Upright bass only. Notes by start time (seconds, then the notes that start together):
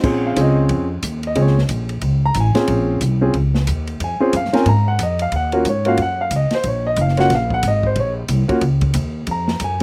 0.04 A#1
0.37 C#2
0.70 F2
1.03 D#2
1.36 C#2
1.69 A#1
2.02 C#2
2.35 A1
2.55 muted upright bass stroke
2.68 A#1
3.01 C2
3.34 C#2
3.67 D#2
4.00 F2
4.20 muted upright bass stroke
4.33 F#2
4.53 muted upright bass stroke
4.66 G#2
4.99 F2
5.32 D#2
5.65 G#2
5.98 F#2
6.31 C#2
6.51 muted upright bass stroke
6.64 A#1
6.97 F#1
7.30 A#1
7.63 G#1
7.96 A#1
8.29 C2
8.49 muted upright bass stroke
8.62 C#2
8.94 D#2
9.27 F2
9.60 F#2